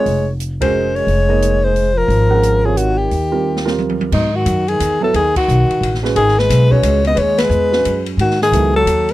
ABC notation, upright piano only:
X:1
M:3/4
L:1/8
Q:"Swing" 1/4=177
K:Fm
V:1 name="Upright piano"
z3 [A,D_GB]3 | z [B,EAe]3 z2 | z [A,DB_g]2 [C,FBd]3 | z [G,CFB]2 [G,CFB]3 |
[K:G#phr] z4 z [F,B,EA] | z4 z [G,CFB] | z3 [G,CFB]3 | z3 [G,CFB]3 |
z2 [F,B,EA] z3 |]